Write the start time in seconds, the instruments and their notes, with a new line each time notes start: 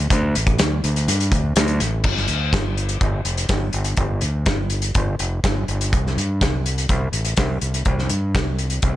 0.10 fingered electric bass D2, kick, closed hi-hat
0.35 fingered electric bass A1, closed hi-hat
0.47 kick, closed hi-hat
0.58 fingered electric bass D2, snare, closed hi-hat
0.84 fingered electric bass D2, closed hi-hat
0.96 closed hi-hat
1.08 fingered electric bass G2, closed hi-hat
1.20 closed hi-hat
1.32 fingered electric bass D2, kick, closed hi-hat
1.56 fingered electric bass D2, snare, closed hi-hat
1.68 closed hi-hat
1.80 fingered electric bass A1, snare, closed hi-hat
2.04 fingered electric bass G1, kick, crash
2.17 snare
2.28 fingered electric bass D2, closed hi-hat
2.53 fingered electric bass G1, kick, snare, closed hi-hat
2.77 closed hi-hat
2.89 closed hi-hat
3.01 fingered electric bass G1, kick, closed hi-hat
3.25 fingered electric bass F1, closed hi-hat
3.37 closed hi-hat
3.49 fingered electric bass G1, kick, snare, closed hi-hat
3.73 fingered electric bass G1, closed hi-hat
3.84 closed hi-hat
3.96 fingered electric bass G1, kick, closed hi-hat
4.21 fingered electric bass D2, closed hi-hat
4.46 fingered electric bass G1, kick, snare, closed hi-hat
4.70 closed hi-hat
4.82 closed hi-hat
4.94 fingered electric bass G1, kick, closed hi-hat
5.19 fingered electric bass F1, closed hi-hat
5.44 fingered electric bass G1, kick, snare, closed hi-hat
5.68 fingered electric bass G1, closed hi-hat
5.81 closed hi-hat
5.93 fingered electric bass C2, kick, closed hi-hat
6.07 snare
6.17 fingered electric bass G2, closed hi-hat
6.41 fingered electric bass C2, kick, snare, closed hi-hat
6.66 closed hi-hat
6.78 closed hi-hat
6.89 fingered electric bass C2, kick, closed hi-hat
7.12 fingered electric bass A1, closed hi-hat
7.25 closed hi-hat
7.36 fingered electric bass C2, kick, snare, closed hi-hat
7.61 fingered electric bass C2, closed hi-hat
7.74 closed hi-hat
7.85 fingered electric bass C2, kick, closed hi-hat
7.99 snare
8.09 fingered electric bass G2, closed hi-hat
8.35 fingered electric bass C2, kick, snare, closed hi-hat
8.58 closed hi-hat
8.70 closed hi-hat
8.82 fingered electric bass C2, kick, closed hi-hat